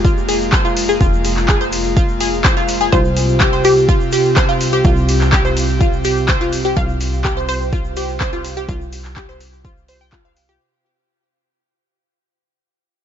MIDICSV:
0, 0, Header, 1, 7, 480
1, 0, Start_track
1, 0, Tempo, 480000
1, 1007, Time_signature, 4, 2, 24, 8
1, 13045, End_track
2, 0, Start_track
2, 0, Title_t, "Synth bell"
2, 0, Program_c, 0, 98
2, 0, Note_on_c, 0, 67, 98
2, 432, Note_off_c, 0, 67, 0
2, 2926, Note_on_c, 0, 72, 102
2, 3552, Note_off_c, 0, 72, 0
2, 3648, Note_on_c, 0, 67, 100
2, 4274, Note_off_c, 0, 67, 0
2, 6767, Note_on_c, 0, 77, 107
2, 7392, Note_off_c, 0, 77, 0
2, 7488, Note_on_c, 0, 72, 101
2, 8113, Note_off_c, 0, 72, 0
2, 13045, End_track
3, 0, Start_track
3, 0, Title_t, "Synth pluck"
3, 0, Program_c, 1, 84
3, 0, Note_on_c, 1, 67, 93
3, 432, Note_off_c, 1, 67, 0
3, 2925, Note_on_c, 1, 72, 102
3, 3552, Note_off_c, 1, 72, 0
3, 3647, Note_on_c, 1, 67, 96
3, 4273, Note_off_c, 1, 67, 0
3, 6766, Note_on_c, 1, 77, 98
3, 7392, Note_off_c, 1, 77, 0
3, 7486, Note_on_c, 1, 72, 98
3, 8113, Note_off_c, 1, 72, 0
3, 13045, End_track
4, 0, Start_track
4, 0, Title_t, "Synth arpeggio sound"
4, 0, Program_c, 2, 84
4, 46, Note_on_c, 2, 65, 87
4, 124, Note_off_c, 2, 65, 0
4, 286, Note_on_c, 2, 68, 77
4, 364, Note_off_c, 2, 68, 0
4, 526, Note_on_c, 2, 72, 104
4, 604, Note_off_c, 2, 72, 0
4, 648, Note_on_c, 2, 65, 79
4, 694, Note_off_c, 2, 65, 0
4, 889, Note_on_c, 2, 68, 77
4, 934, Note_off_c, 2, 68, 0
4, 1006, Note_on_c, 2, 65, 83
4, 1122, Note_off_c, 2, 65, 0
4, 1485, Note_on_c, 2, 68, 97
4, 1564, Note_off_c, 2, 68, 0
4, 1609, Note_on_c, 2, 72, 79
4, 1654, Note_off_c, 2, 72, 0
4, 1966, Note_on_c, 2, 65, 86
4, 2044, Note_off_c, 2, 65, 0
4, 2206, Note_on_c, 2, 68, 79
4, 2284, Note_off_c, 2, 68, 0
4, 2446, Note_on_c, 2, 72, 104
4, 2524, Note_off_c, 2, 72, 0
4, 2568, Note_on_c, 2, 65, 79
4, 2614, Note_off_c, 2, 65, 0
4, 2807, Note_on_c, 2, 68, 78
4, 2853, Note_off_c, 2, 68, 0
4, 2926, Note_on_c, 2, 65, 85
4, 3042, Note_off_c, 2, 65, 0
4, 3406, Note_on_c, 2, 67, 102
4, 3484, Note_off_c, 2, 67, 0
4, 3529, Note_on_c, 2, 72, 76
4, 3574, Note_off_c, 2, 72, 0
4, 3887, Note_on_c, 2, 65, 90
4, 3965, Note_off_c, 2, 65, 0
4, 4126, Note_on_c, 2, 67, 78
4, 4204, Note_off_c, 2, 67, 0
4, 4365, Note_on_c, 2, 72, 105
4, 4444, Note_off_c, 2, 72, 0
4, 4488, Note_on_c, 2, 65, 80
4, 4534, Note_off_c, 2, 65, 0
4, 4729, Note_on_c, 2, 67, 78
4, 4774, Note_off_c, 2, 67, 0
4, 4846, Note_on_c, 2, 65, 85
4, 4963, Note_off_c, 2, 65, 0
4, 5327, Note_on_c, 2, 67, 97
4, 5405, Note_off_c, 2, 67, 0
4, 5449, Note_on_c, 2, 72, 78
4, 5494, Note_off_c, 2, 72, 0
4, 5806, Note_on_c, 2, 65, 86
4, 5884, Note_off_c, 2, 65, 0
4, 6047, Note_on_c, 2, 67, 78
4, 6125, Note_off_c, 2, 67, 0
4, 6287, Note_on_c, 2, 72, 104
4, 6365, Note_off_c, 2, 72, 0
4, 6410, Note_on_c, 2, 65, 77
4, 6454, Note_off_c, 2, 65, 0
4, 6649, Note_on_c, 2, 67, 76
4, 6694, Note_off_c, 2, 67, 0
4, 6767, Note_on_c, 2, 65, 82
4, 6883, Note_off_c, 2, 65, 0
4, 7246, Note_on_c, 2, 67, 105
4, 7324, Note_off_c, 2, 67, 0
4, 7369, Note_on_c, 2, 72, 80
4, 7414, Note_off_c, 2, 72, 0
4, 7727, Note_on_c, 2, 65, 89
4, 7805, Note_off_c, 2, 65, 0
4, 7968, Note_on_c, 2, 67, 81
4, 8045, Note_off_c, 2, 67, 0
4, 8208, Note_on_c, 2, 72, 105
4, 8285, Note_off_c, 2, 72, 0
4, 8329, Note_on_c, 2, 65, 81
4, 8374, Note_off_c, 2, 65, 0
4, 8570, Note_on_c, 2, 67, 77
4, 8614, Note_off_c, 2, 67, 0
4, 8687, Note_on_c, 2, 65, 84
4, 8803, Note_off_c, 2, 65, 0
4, 9166, Note_on_c, 2, 67, 101
4, 9244, Note_off_c, 2, 67, 0
4, 9289, Note_on_c, 2, 72, 81
4, 9334, Note_off_c, 2, 72, 0
4, 9648, Note_on_c, 2, 65, 88
4, 9725, Note_off_c, 2, 65, 0
4, 9888, Note_on_c, 2, 72, 77
4, 9965, Note_off_c, 2, 72, 0
4, 10009, Note_on_c, 2, 79, 76
4, 10121, Note_off_c, 2, 79, 0
4, 10126, Note_on_c, 2, 65, 84
4, 10204, Note_off_c, 2, 65, 0
4, 10249, Note_on_c, 2, 77, 80
4, 10361, Note_off_c, 2, 77, 0
4, 10489, Note_on_c, 2, 67, 78
4, 10564, Note_off_c, 2, 67, 0
4, 13045, End_track
5, 0, Start_track
5, 0, Title_t, "Analog synth pad"
5, 0, Program_c, 3, 89
5, 0, Note_on_c, 3, 56, 84
5, 0, Note_on_c, 3, 58, 78
5, 0, Note_on_c, 3, 65, 93
5, 2887, Note_off_c, 3, 56, 0
5, 2888, Note_off_c, 3, 58, 0
5, 2925, Note_on_c, 3, 60, 77
5, 2925, Note_on_c, 3, 67, 91
5, 2926, Note_on_c, 3, 48, 83
5, 10566, Note_off_c, 3, 48, 0
5, 10566, Note_off_c, 3, 60, 0
5, 10566, Note_off_c, 3, 67, 0
5, 10567, Note_off_c, 3, 65, 0
5, 13045, End_track
6, 0, Start_track
6, 0, Title_t, "Analog synth bass"
6, 0, Program_c, 4, 38
6, 0, Note_on_c, 4, 29, 93
6, 983, Note_off_c, 4, 29, 0
6, 1006, Note_on_c, 4, 29, 96
6, 2903, Note_off_c, 4, 29, 0
6, 2925, Note_on_c, 4, 36, 97
6, 4822, Note_off_c, 4, 36, 0
6, 4846, Note_on_c, 4, 36, 95
6, 6743, Note_off_c, 4, 36, 0
6, 6767, Note_on_c, 4, 36, 94
6, 8663, Note_off_c, 4, 36, 0
6, 8686, Note_on_c, 4, 36, 96
6, 10583, Note_off_c, 4, 36, 0
6, 13045, End_track
7, 0, Start_track
7, 0, Title_t, "Drums"
7, 46, Note_on_c, 9, 36, 127
7, 52, Note_on_c, 9, 82, 54
7, 146, Note_off_c, 9, 36, 0
7, 152, Note_off_c, 9, 82, 0
7, 175, Note_on_c, 9, 82, 26
7, 275, Note_off_c, 9, 82, 0
7, 286, Note_on_c, 9, 46, 112
7, 292, Note_on_c, 9, 82, 100
7, 386, Note_off_c, 9, 46, 0
7, 392, Note_off_c, 9, 82, 0
7, 412, Note_on_c, 9, 82, 47
7, 512, Note_off_c, 9, 82, 0
7, 524, Note_on_c, 9, 39, 125
7, 526, Note_on_c, 9, 36, 127
7, 530, Note_on_c, 9, 82, 55
7, 624, Note_off_c, 9, 39, 0
7, 626, Note_off_c, 9, 36, 0
7, 630, Note_off_c, 9, 82, 0
7, 651, Note_on_c, 9, 82, 27
7, 751, Note_off_c, 9, 82, 0
7, 766, Note_on_c, 9, 46, 116
7, 772, Note_on_c, 9, 82, 95
7, 866, Note_off_c, 9, 46, 0
7, 871, Note_off_c, 9, 82, 0
7, 891, Note_on_c, 9, 82, 46
7, 991, Note_off_c, 9, 82, 0
7, 1006, Note_on_c, 9, 36, 127
7, 1007, Note_on_c, 9, 82, 58
7, 1106, Note_off_c, 9, 36, 0
7, 1107, Note_off_c, 9, 82, 0
7, 1134, Note_on_c, 9, 82, 30
7, 1234, Note_off_c, 9, 82, 0
7, 1245, Note_on_c, 9, 82, 84
7, 1246, Note_on_c, 9, 46, 112
7, 1345, Note_off_c, 9, 82, 0
7, 1346, Note_off_c, 9, 46, 0
7, 1367, Note_on_c, 9, 39, 36
7, 1374, Note_on_c, 9, 82, 38
7, 1467, Note_off_c, 9, 39, 0
7, 1474, Note_off_c, 9, 82, 0
7, 1480, Note_on_c, 9, 82, 52
7, 1484, Note_on_c, 9, 39, 118
7, 1486, Note_on_c, 9, 36, 127
7, 1580, Note_off_c, 9, 82, 0
7, 1584, Note_off_c, 9, 39, 0
7, 1586, Note_off_c, 9, 36, 0
7, 1615, Note_on_c, 9, 82, 29
7, 1715, Note_off_c, 9, 82, 0
7, 1721, Note_on_c, 9, 82, 104
7, 1725, Note_on_c, 9, 46, 103
7, 1821, Note_off_c, 9, 82, 0
7, 1825, Note_off_c, 9, 46, 0
7, 1842, Note_on_c, 9, 82, 42
7, 1942, Note_off_c, 9, 82, 0
7, 1966, Note_on_c, 9, 36, 127
7, 1967, Note_on_c, 9, 82, 58
7, 2066, Note_off_c, 9, 36, 0
7, 2067, Note_off_c, 9, 82, 0
7, 2083, Note_on_c, 9, 82, 27
7, 2183, Note_off_c, 9, 82, 0
7, 2205, Note_on_c, 9, 46, 113
7, 2210, Note_on_c, 9, 82, 95
7, 2305, Note_off_c, 9, 46, 0
7, 2310, Note_off_c, 9, 82, 0
7, 2338, Note_on_c, 9, 82, 45
7, 2438, Note_off_c, 9, 82, 0
7, 2444, Note_on_c, 9, 39, 123
7, 2446, Note_on_c, 9, 36, 121
7, 2449, Note_on_c, 9, 82, 59
7, 2544, Note_off_c, 9, 39, 0
7, 2546, Note_off_c, 9, 36, 0
7, 2549, Note_off_c, 9, 82, 0
7, 2573, Note_on_c, 9, 82, 28
7, 2673, Note_off_c, 9, 82, 0
7, 2684, Note_on_c, 9, 82, 107
7, 2686, Note_on_c, 9, 46, 113
7, 2784, Note_off_c, 9, 82, 0
7, 2786, Note_off_c, 9, 46, 0
7, 2806, Note_on_c, 9, 82, 43
7, 2906, Note_off_c, 9, 82, 0
7, 2926, Note_on_c, 9, 36, 125
7, 2928, Note_on_c, 9, 82, 56
7, 3026, Note_off_c, 9, 36, 0
7, 3028, Note_off_c, 9, 82, 0
7, 3047, Note_on_c, 9, 82, 27
7, 3147, Note_off_c, 9, 82, 0
7, 3166, Note_on_c, 9, 46, 105
7, 3168, Note_on_c, 9, 82, 91
7, 3266, Note_off_c, 9, 46, 0
7, 3268, Note_off_c, 9, 82, 0
7, 3285, Note_on_c, 9, 82, 41
7, 3385, Note_off_c, 9, 82, 0
7, 3400, Note_on_c, 9, 82, 56
7, 3404, Note_on_c, 9, 39, 111
7, 3406, Note_on_c, 9, 36, 118
7, 3500, Note_off_c, 9, 82, 0
7, 3504, Note_off_c, 9, 39, 0
7, 3506, Note_off_c, 9, 36, 0
7, 3530, Note_on_c, 9, 82, 26
7, 3630, Note_off_c, 9, 82, 0
7, 3644, Note_on_c, 9, 82, 87
7, 3647, Note_on_c, 9, 46, 107
7, 3744, Note_off_c, 9, 82, 0
7, 3747, Note_off_c, 9, 46, 0
7, 3772, Note_on_c, 9, 82, 40
7, 3872, Note_off_c, 9, 82, 0
7, 3887, Note_on_c, 9, 36, 123
7, 3889, Note_on_c, 9, 82, 56
7, 3986, Note_off_c, 9, 36, 0
7, 3989, Note_off_c, 9, 82, 0
7, 4003, Note_on_c, 9, 82, 25
7, 4103, Note_off_c, 9, 82, 0
7, 4121, Note_on_c, 9, 82, 100
7, 4126, Note_on_c, 9, 46, 107
7, 4221, Note_off_c, 9, 82, 0
7, 4226, Note_off_c, 9, 46, 0
7, 4250, Note_on_c, 9, 82, 41
7, 4350, Note_off_c, 9, 82, 0
7, 4364, Note_on_c, 9, 39, 118
7, 4367, Note_on_c, 9, 36, 121
7, 4367, Note_on_c, 9, 82, 52
7, 4464, Note_off_c, 9, 39, 0
7, 4467, Note_off_c, 9, 36, 0
7, 4467, Note_off_c, 9, 82, 0
7, 4490, Note_on_c, 9, 82, 24
7, 4590, Note_off_c, 9, 82, 0
7, 4606, Note_on_c, 9, 46, 102
7, 4612, Note_on_c, 9, 82, 103
7, 4706, Note_off_c, 9, 46, 0
7, 4712, Note_off_c, 9, 82, 0
7, 4720, Note_on_c, 9, 82, 40
7, 4820, Note_off_c, 9, 82, 0
7, 4845, Note_on_c, 9, 82, 54
7, 4847, Note_on_c, 9, 36, 122
7, 4945, Note_off_c, 9, 82, 0
7, 4947, Note_off_c, 9, 36, 0
7, 4966, Note_on_c, 9, 82, 27
7, 5065, Note_off_c, 9, 82, 0
7, 5086, Note_on_c, 9, 46, 104
7, 5086, Note_on_c, 9, 82, 79
7, 5186, Note_off_c, 9, 46, 0
7, 5186, Note_off_c, 9, 82, 0
7, 5207, Note_on_c, 9, 39, 36
7, 5211, Note_on_c, 9, 82, 36
7, 5307, Note_off_c, 9, 39, 0
7, 5311, Note_off_c, 9, 82, 0
7, 5325, Note_on_c, 9, 39, 115
7, 5327, Note_on_c, 9, 36, 115
7, 5334, Note_on_c, 9, 82, 59
7, 5425, Note_off_c, 9, 39, 0
7, 5427, Note_off_c, 9, 36, 0
7, 5434, Note_off_c, 9, 82, 0
7, 5449, Note_on_c, 9, 82, 27
7, 5549, Note_off_c, 9, 82, 0
7, 5567, Note_on_c, 9, 46, 103
7, 5575, Note_on_c, 9, 82, 88
7, 5667, Note_off_c, 9, 46, 0
7, 5675, Note_off_c, 9, 82, 0
7, 5683, Note_on_c, 9, 82, 38
7, 5783, Note_off_c, 9, 82, 0
7, 5807, Note_on_c, 9, 36, 121
7, 5807, Note_on_c, 9, 82, 51
7, 5907, Note_off_c, 9, 36, 0
7, 5907, Note_off_c, 9, 82, 0
7, 5927, Note_on_c, 9, 82, 25
7, 6027, Note_off_c, 9, 82, 0
7, 6042, Note_on_c, 9, 82, 102
7, 6047, Note_on_c, 9, 46, 102
7, 6142, Note_off_c, 9, 82, 0
7, 6147, Note_off_c, 9, 46, 0
7, 6172, Note_on_c, 9, 82, 40
7, 6272, Note_off_c, 9, 82, 0
7, 6284, Note_on_c, 9, 39, 117
7, 6286, Note_on_c, 9, 82, 50
7, 6287, Note_on_c, 9, 36, 123
7, 6384, Note_off_c, 9, 39, 0
7, 6386, Note_off_c, 9, 82, 0
7, 6387, Note_off_c, 9, 36, 0
7, 6410, Note_on_c, 9, 82, 24
7, 6510, Note_off_c, 9, 82, 0
7, 6526, Note_on_c, 9, 46, 104
7, 6528, Note_on_c, 9, 82, 93
7, 6626, Note_off_c, 9, 46, 0
7, 6628, Note_off_c, 9, 82, 0
7, 6653, Note_on_c, 9, 82, 37
7, 6753, Note_off_c, 9, 82, 0
7, 6767, Note_on_c, 9, 36, 122
7, 6767, Note_on_c, 9, 82, 54
7, 6867, Note_off_c, 9, 36, 0
7, 6867, Note_off_c, 9, 82, 0
7, 6887, Note_on_c, 9, 82, 25
7, 6987, Note_off_c, 9, 82, 0
7, 7006, Note_on_c, 9, 46, 103
7, 7008, Note_on_c, 9, 82, 87
7, 7106, Note_off_c, 9, 46, 0
7, 7108, Note_off_c, 9, 82, 0
7, 7130, Note_on_c, 9, 82, 39
7, 7230, Note_off_c, 9, 82, 0
7, 7244, Note_on_c, 9, 39, 120
7, 7247, Note_on_c, 9, 36, 114
7, 7253, Note_on_c, 9, 82, 53
7, 7344, Note_off_c, 9, 39, 0
7, 7347, Note_off_c, 9, 36, 0
7, 7353, Note_off_c, 9, 82, 0
7, 7372, Note_on_c, 9, 82, 27
7, 7472, Note_off_c, 9, 82, 0
7, 7485, Note_on_c, 9, 82, 81
7, 7486, Note_on_c, 9, 46, 98
7, 7585, Note_off_c, 9, 82, 0
7, 7586, Note_off_c, 9, 46, 0
7, 7616, Note_on_c, 9, 82, 37
7, 7716, Note_off_c, 9, 82, 0
7, 7727, Note_on_c, 9, 36, 119
7, 7727, Note_on_c, 9, 82, 48
7, 7827, Note_off_c, 9, 36, 0
7, 7827, Note_off_c, 9, 82, 0
7, 7844, Note_on_c, 9, 82, 23
7, 7944, Note_off_c, 9, 82, 0
7, 7963, Note_on_c, 9, 82, 90
7, 7966, Note_on_c, 9, 46, 97
7, 8063, Note_off_c, 9, 82, 0
7, 8066, Note_off_c, 9, 46, 0
7, 8089, Note_on_c, 9, 82, 38
7, 8189, Note_off_c, 9, 82, 0
7, 8204, Note_on_c, 9, 39, 121
7, 8206, Note_on_c, 9, 36, 121
7, 8209, Note_on_c, 9, 82, 54
7, 8304, Note_off_c, 9, 39, 0
7, 8306, Note_off_c, 9, 36, 0
7, 8309, Note_off_c, 9, 82, 0
7, 8327, Note_on_c, 9, 82, 23
7, 8427, Note_off_c, 9, 82, 0
7, 8446, Note_on_c, 9, 46, 100
7, 8456, Note_on_c, 9, 82, 88
7, 8545, Note_off_c, 9, 46, 0
7, 8556, Note_off_c, 9, 82, 0
7, 8567, Note_on_c, 9, 82, 37
7, 8667, Note_off_c, 9, 82, 0
7, 8686, Note_on_c, 9, 36, 116
7, 8688, Note_on_c, 9, 82, 48
7, 8786, Note_off_c, 9, 36, 0
7, 8788, Note_off_c, 9, 82, 0
7, 8812, Note_on_c, 9, 82, 24
7, 8912, Note_off_c, 9, 82, 0
7, 8925, Note_on_c, 9, 82, 86
7, 8926, Note_on_c, 9, 46, 109
7, 9025, Note_off_c, 9, 82, 0
7, 9026, Note_off_c, 9, 46, 0
7, 9046, Note_on_c, 9, 39, 39
7, 9046, Note_on_c, 9, 82, 42
7, 9146, Note_off_c, 9, 39, 0
7, 9146, Note_off_c, 9, 82, 0
7, 9163, Note_on_c, 9, 39, 122
7, 9166, Note_on_c, 9, 36, 117
7, 9170, Note_on_c, 9, 82, 47
7, 9263, Note_off_c, 9, 39, 0
7, 9266, Note_off_c, 9, 36, 0
7, 9270, Note_off_c, 9, 82, 0
7, 9298, Note_on_c, 9, 82, 25
7, 9398, Note_off_c, 9, 82, 0
7, 9405, Note_on_c, 9, 46, 99
7, 9407, Note_on_c, 9, 82, 84
7, 9505, Note_off_c, 9, 46, 0
7, 9507, Note_off_c, 9, 82, 0
7, 9529, Note_on_c, 9, 82, 37
7, 9629, Note_off_c, 9, 82, 0
7, 9646, Note_on_c, 9, 36, 118
7, 9648, Note_on_c, 9, 82, 50
7, 9746, Note_off_c, 9, 36, 0
7, 9748, Note_off_c, 9, 82, 0
7, 9775, Note_on_c, 9, 82, 23
7, 9875, Note_off_c, 9, 82, 0
7, 9885, Note_on_c, 9, 46, 104
7, 9890, Note_on_c, 9, 82, 100
7, 9985, Note_off_c, 9, 46, 0
7, 9990, Note_off_c, 9, 82, 0
7, 10011, Note_on_c, 9, 82, 43
7, 10111, Note_off_c, 9, 82, 0
7, 10120, Note_on_c, 9, 82, 49
7, 10124, Note_on_c, 9, 39, 126
7, 10126, Note_on_c, 9, 36, 119
7, 10220, Note_off_c, 9, 82, 0
7, 10224, Note_off_c, 9, 39, 0
7, 10226, Note_off_c, 9, 36, 0
7, 10250, Note_on_c, 9, 82, 23
7, 10350, Note_off_c, 9, 82, 0
7, 10363, Note_on_c, 9, 82, 87
7, 10366, Note_on_c, 9, 46, 104
7, 10463, Note_off_c, 9, 82, 0
7, 10466, Note_off_c, 9, 46, 0
7, 10490, Note_on_c, 9, 82, 35
7, 10590, Note_off_c, 9, 82, 0
7, 13045, End_track
0, 0, End_of_file